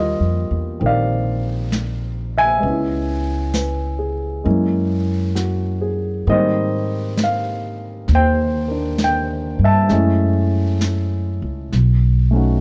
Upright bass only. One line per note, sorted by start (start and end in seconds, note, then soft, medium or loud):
0.00 0.16 D#2 medium
0.20 0.48 F2 soft
0.51 0.79 E2 medium
0.81 2.59 A#1 medium
2.63 4.41 C#2 medium
4.45 6.23 F#2 medium
6.27 8.05 G#2 medium
8.09 9.56 D#2 medium
9.59 9.88 G2 medium
9.91 11.38 F#2 medium
11.42 11.70 C#2 medium
11.73 12.61 B1 medium